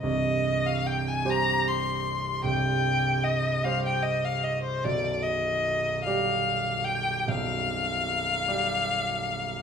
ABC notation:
X:1
M:12/8
L:1/16
Q:3/8=50
K:Gphr
V:1 name="Violin"
e3 f g a b2 c'4 g4 e2 f g e f e c | d2 e4 f4 g2 f12 |]
V:2 name="Grand piano" clef=bass
[C,,,C,,]6 [G,Gc]6 [C,,,C,,]6 [G,Gc]6 | [=B,,,,=B,,,]6 [G,Gd]6 [B,,,,B,,,]6 [G,Gd]6 |]